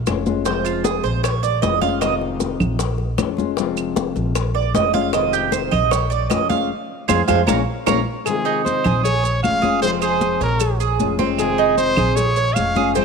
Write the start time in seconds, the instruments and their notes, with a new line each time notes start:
0.06 upright bass F1, nylon-string guitar F3 G#3 C#4 F4, high bongo, low bongo, high conga, claves, maracas
0.26 nylon-string guitar G#3 C#4 F4, high bongo, high conga, maracas
0.45 nylon-string guitar C3 F3 G#3 C4 F4, cuban tres C5, high bongo, high conga, maracas
0.65 cuban tres F4, high conga, claves, maracas
0.84 cuban tres G#4, high bongo, high conga, maracas
1.04 upright bass A#1, cuban tres C5, high bongo, high conga, maracas
1.24 cuban tres C#5, muted nylon-string guitar stroke, high bongo, high conga, claves, maracas
1.43 cuban tres D5, high bongo, high conga, maracas
1.62 upright bass F1, nylon-string guitar F3 G#3 C#4 F4, cuban tres D#5, high bongo, low bongo, high conga, maracas
1.81 nylon-string guitar G#3 C#4 F4, cuban tres F5, high bongo, high conga, maracas
2.01 nylon-string guitar C3 D#3 G#3 C4 F4, cuban tres D#5, high bongo, high conga, claves, maracas
2.21 high bongo, high conga
2.40 high bongo, high conga, maracas
2.60 upright bass A#1, high conga, low conga, claves, maracas
2.79 muted nylon-string guitar stroke, high bongo, high conga, maracas
2.98 high bongo, high conga
3.18 upright bass F1, nylon-string guitar F3 G#3 C#4 F4, high bongo, low bongo, high conga, claves, maracas
3.37 nylon-string guitar G#3 C#4 F4, high bongo, high conga, maracas
3.56 nylon-string guitar C3 F3 G#3 C4 F4, high bongo, high conga, maracas
3.77 high conga, claves, maracas
3.96 high bongo, high conga, maracas
4.16 upright bass A#1, high bongo, high conga, maracas
4.35 muted nylon-string guitar stroke, high bongo, high conga, claves, maracas
4.55 cuban tres D5, high bongo, high conga
4.74 upright bass F1, nylon-string guitar F3 G#3 C#4 F4, cuban tres D#5, high bongo, low bongo, high conga, maracas
4.93 nylon-string guitar G#3 C#4 F4, cuban tres F5, high bongo, high conga, maracas
5.12 nylon-string guitar C3 D#3 G#3 C4 F4, cuban tres D#5, high bongo, high conga, claves, maracas
5.33 cuban tres G4, high bongo, high conga, maracas
5.52 cuban tres C5, high bongo, high conga, maracas
5.71 upright bass A#1, cuban tres D#5, high conga, low conga, claves, maracas
5.91 cuban tres C#5, muted nylon-string guitar stroke, high bongo, high conga, maracas
6.10 cuban tres D5, high bongo, high conga, maracas
6.30 upright bass F1, nylon-string guitar F3 G#3 C#4 F4, cuban tres D#5, high bongo, low bongo, high conga, claves, maracas
6.50 nylon-string guitar G#3 C#4 F4, cuban tres F5, high bongo, high conga, maracas
7.08 upright bass F2, nylon-string guitar F3 G#3 C4, cuban tres G#4 C5 F5, low bongo, high conga, claves, maracas
7.28 upright bass F2, nylon-string guitar F3 G#3 C4, cuban tres G#4 C5 F5, low bongo, high conga, claves, maracas
7.47 upright bass A#1, nylon-string guitar G#3 A#3 C#4, cuban tres A#4 C#5 F5, low bongo, high conga, claves, maracas
7.86 upright bass A#1, nylon-string guitar G#3 A#3 C#4, cuban tres A#4 C#5 F5, low bongo, high conga, claves, maracas
8.26 nylon-string guitar C3 D#3 G#3 C4 F4, trumpet G#4, cowbell, high conga, claves, maracas
8.45 cuban tres D#4, cowbell, high conga
8.65 trumpet C5, cowbell, high conga, maracas
8.84 upright bass A#1, cuban tres G#4, high conga, low conga, claves, maracas
9.04 trumpet C#5, muted nylon-string guitar stroke, cowbell, high conga, maracas
9.23 cuban tres C#5, high conga, maracas
9.43 upright bass F1, nylon-string guitar F3 G#3 C#4 F4, trumpet F5, cowbell, high conga, claves, maracas
9.62 nylon-string guitar G#3 C#4 F4, cuban tres G#4, high conga, maracas
9.82 nylon-string guitar C3 F3 G#3 C4 F4, cuban tres C4, trumpet C5, cowbell, high conga, maracas
10.02 cuban tres G#4, trumpet C5, high conga, claves, maracas
10.21 cowbell, high conga, maracas
10.41 upright bass A#1, trumpet A#4, cuban tres C#5, cowbell, high conga, maracas
10.60 muted nylon-string guitar stroke, cowbell, high conga, claves, maracas
10.80 cuban tres G#4, high conga, maracas
10.99 nylon-string guitar F3 G#3 C#4 F4, cowbell, high conga, maracas
11.19 nylon-string guitar G#3 C#4 F4, cuban tres C4, cowbell, high conga, maracas
11.37 nylon-string guitar C3 D#3 G#3 C4 F4, trumpet G#4, cowbell, high conga, claves, maracas
11.58 cuban tres D#4, cowbell, high conga
11.78 trumpet C5, cowbell, high conga, maracas
11.97 upright bass A#1, cuban tres G#4, high conga, low conga, claves, maracas
12.16 trumpet C#5, muted nylon-string guitar stroke, cowbell, high conga, maracas
12.36 cuban tres C#5, high conga, maracas
12.55 upright bass F1, nylon-string guitar F3 G#3 C#4 F4, trumpet F5, cowbell, high conga, claves, maracas
12.75 nylon-string guitar G#3 C#4 F4, cuban tres G#4, high conga, maracas
12.94 nylon-string guitar C3 F3 G#3 C4, cuban tres C4, trumpet C5, cowbell, high conga, maracas
12.99 nylon-string guitar F4